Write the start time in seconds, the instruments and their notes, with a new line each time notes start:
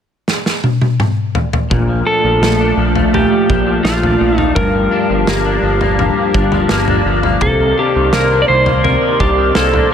0.28 snare
0.46 snare
0.64 high tom
0.81 high tom
1.00 mid tom
1.35 floor tom
1.53 floor tom
1.70 analog synth bass A#1, clean electric guitar A#2, ambient pad A3 F5 A5 D6, kick, floor tom
1.88 clean electric guitar F3
2.07 clean electric guitar D4, electric slide guitar A4
2.24 analog synth bass A#1, clean electric guitar F3
2.41 analog synth bass A#1, clean electric guitar A3, snare
2.60 clean electric guitar D4
2.77 analog synth bass A#1, clean electric guitar F3
2.95 clean electric guitar A3, floor tom
3.14 clean electric guitar A#2, electric slide guitar G4, floor tom
3.31 clean electric guitar F3
3.49 analog synth bass A#1, clean electric guitar D4, kick
3.66 clean electric guitar F3
3.84 analog synth bass A#1, clean electric guitar A3, electric slide guitar F4, snare
4.02 clean electric guitar D4, floor tom
4.20 analog synth bass A#1, clean electric guitar F3
4.38 clean electric guitar A3, electric slide guitar D#4, floor tom
4.55 analog synth bass G1, clean electric guitar G2, ambient pad G4, electric slide guitar A#4, kick, floor tom
4.74 clean electric guitar F3
4.91 clean electric guitar D4
5.10 analog synth bass G1, clean electric guitar F3
5.27 analog synth bass G1, clean electric guitar A#3, snare
5.45 clean electric guitar D4
5.62 analog synth bass G1, clean electric guitar F3
5.81 clean electric guitar A#3, floor tom
5.99 clean electric guitar G2, floor tom
6.17 clean electric guitar F3
6.34 analog synth bass G1, clean electric guitar D4, kick
6.52 clean electric guitar F3, floor tom
6.69 analog synth bass G1, clean electric guitar A#3, snare
6.88 clean electric guitar D4, floor tom
7.05 analog synth bass G1, clean electric guitar F3
7.23 clean electric guitar A#3, floor tom
7.41 analog synth bass C2, clean electric guitar C3, electric slide guitar A4, ambient pad C5 D5 C6, kick, floor tom
7.60 clean electric guitar D#3
7.78 clean electric guitar D4, electric slide guitar G4
7.95 analog synth bass C2, clean electric guitar D#3
8.13 analog synth bass C2, clean electric guitar A#3, electric slide guitar A#4, snare
8.31 clean electric guitar D4
8.42 electric slide guitar D5
8.48 analog synth bass C2, clean electric guitar D#3, electric slide guitar C5
8.66 clean electric guitar A#3, floor tom
8.84 clean electric guitar C3, electric slide guitar A#4, floor tom
9.02 clean electric guitar D#3
9.19 analog synth bass C2, clean electric guitar D4, electric slide guitar G4, kick
9.37 clean electric guitar D#3
9.55 analog synth bass C2, clean electric guitar A#3, electric slide guitar A4, snare
9.73 clean electric guitar D4, floor tom